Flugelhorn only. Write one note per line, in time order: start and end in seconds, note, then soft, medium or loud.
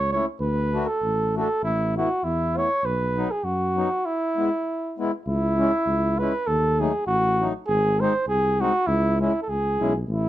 0.12 0.25 C#5 medium
0.41 0.88 B4 medium
0.87 1.35 A4 medium
1.37 1.62 A4 medium
1.64 1.94 E4 medium
1.97 2.25 F#4 medium
2.24 2.59 E4 medium
2.57 2.87 C#5 medium
2.85 3.33 B4 medium
3.31 3.45 G#4 medium
3.44 4.07 F#4 medium
4.06 5.00 E4 medium
5.26 6.20 E4 medium
6.19 6.48 B4 medium
6.47 6.82 A4 loud
6.80 7.06 G#4 medium
7.07 7.50 F#4 medium
7.67 8.02 G#4 loud
8.00 8.27 C5 medium
8.28 8.62 G#4 loud
8.61 8.88 F#4 medium
8.87 9.20 E4 loud
9.21 9.40 E4 medium
9.42 9.51 A4 medium
9.49 9.96 G#4 loud
10.11 10.29 E4 medium